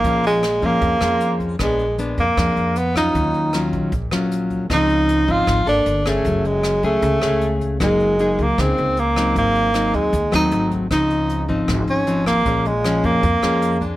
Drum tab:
HH |xxxxxxxx|xxxxxxxx|xxxxxxxx|xxxxxxxx|
SD |--r--r--|r---r--r|--r--r--|r---r--r|
BD |o--oo--o|o--oo--o|o--oo--o|o--oo--o|

HH |xxxxxxxx|xxxxxxxx|xxxxxxxx|xxxxxxxx|
SD |--r--r--|r---r--r|--r--r--|r---r--r|
BD |o--oo--o|o--oo--o|o--oo--o|o--oo--o|

HH |xxxxxxxx|
SD |--r--r--|
BD |o--oo--o|